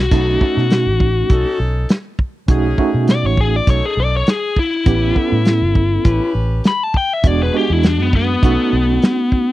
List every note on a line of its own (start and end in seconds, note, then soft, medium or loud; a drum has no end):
0.00 0.10 B1 medium
0.00 1.58 F#4 loud
0.11 0.36 B1 loud
0.11 0.38 A3 medium
0.11 0.71 C#4 medium
0.11 0.38 C#4 medium
0.11 0.71 D#4 medium
0.11 0.38 D#4 medium
0.11 0.39 F#4 medium
0.11 0.72 A4 medium
0.11 kick loud
0.11 closed hi-hat medium
0.11 crash medium
0.41 1.46 A3 medium
0.41 1.46 C#4 medium
0.41 1.46 D#4 medium
0.41 1.47 F#4 medium
0.41 kick medium
0.57 0.88 B2 medium
0.57 snare soft
0.70 snare loud
0.70 closed hi-hat medium
0.86 1.22 A1 medium
1.00 kick medium
1.30 1.43 B1 medium
1.30 1.90 C#4 medium
1.30 1.90 D#4 medium
1.30 1.90 A4 loud
1.30 kick loud
1.30 closed hi-hat medium
1.60 1.84 B1 medium
1.89 snare loud
1.89 closed hi-hat medium
2.19 kick medium
2.48 2.73 B1 loud
2.48 2.75 A3 medium
2.48 3.08 C#4 loud
2.48 2.75 C#4 medium
2.48 3.08 D#4 medium
2.48 2.75 D#4 medium
2.48 2.76 F#4 medium
2.48 3.09 G#4 loud
2.48 kick loud
2.48 closed hi-hat medium
2.77 3.83 A3 medium
2.77 3.83 C#4 medium
2.77 3.84 D#4 medium
2.77 3.84 F#4 medium
2.77 kick medium
2.94 3.25 B2 medium
3.08 3.25 D5 loud
3.08 snare loud
3.08 closed hi-hat medium
3.23 3.59 A1 medium
3.23 3.39 C#5 medium
3.37 3.55 G#4 loud
3.37 kick medium
3.56 3.69 D5 loud
3.66 3.80 B1 medium
3.66 4.27 C#4 medium
3.66 4.27 D#4 medium
3.66 4.27 A4 medium
3.66 3.84 C#5 medium
3.66 kick loud
3.66 closed hi-hat medium
3.86 3.98 G#4 loud
3.97 4.21 B1 loud
3.97 4.14 D5 loud
4.17 4.29 C#5 medium
4.27 4.58 G#4 medium
4.27 snare loud
4.27 closed hi-hat medium
4.56 6.32 E4 loud
4.56 kick medium
4.86 5.10 A1 loud
4.86 5.12 B3 medium
4.86 5.46 C#4 medium
4.86 5.13 C#4 medium
4.86 5.13 E4 medium
4.86 5.46 G4 medium
4.86 5.13 G4 medium
4.86 5.47 B4 medium
4.86 kick loud
4.86 closed hi-hat medium
5.15 6.21 B3 medium
5.15 6.21 C#4 medium
5.15 6.21 E4 medium
5.15 6.22 A4 medium
5.15 kick medium
5.32 5.63 A2 medium
5.45 snare loud
5.45 closed hi-hat medium
5.62 5.97 G1 medium
5.75 kick medium
6.04 6.18 A1 medium
6.04 6.64 C#4 medium
6.04 6.64 G4 medium
6.04 6.65 B4 loud
6.04 kick loud
6.04 closed hi-hat medium
6.35 6.59 A1 loud
6.64 6.83 B5 medium
6.64 snare loud
6.64 closed hi-hat medium
6.83 6.96 A5 loud
6.94 7.11 G5 loud
6.94 kick medium
7.13 7.27 E5 medium
7.23 7.48 E1 loud
7.23 7.50 G#3 medium
7.23 7.50 B3 medium
7.23 7.83 D4 medium
7.23 7.51 D4 medium
7.23 7.84 F#4 medium
7.23 7.51 F#4 medium
7.23 7.84 G#4 medium
7.23 7.41 D5 medium
7.23 kick loud
7.23 closed hi-hat medium
7.43 7.55 B4 medium
7.54 8.43 G#3 medium
7.54 8.43 B3 medium
7.54 8.43 D4 medium
7.54 8.44 F#4 medium
7.54 7.73 G4 loud
7.70 7.99 E2 medium
7.70 7.87 E4 medium
7.83 8.02 D4 medium
7.83 snare loud
7.83 closed hi-hat medium
7.99 8.35 F#2 medium
7.99 8.14 B3 loud
8.13 9.52 B3 loud
8.13 kick medium
8.43 8.56 B1 loud
8.43 9.48 A3 medium
8.43 9.02 C#4 medium
8.43 9.48 C#4 medium
8.43 9.03 D#4 medium
8.43 9.49 D#4 medium
8.43 9.49 F#4 medium
8.43 9.03 A4 medium
8.43 kick loud
8.43 closed hi-hat medium
8.73 8.97 B1 loud
9.02 snare loud
9.02 closed hi-hat medium
9.32 kick medium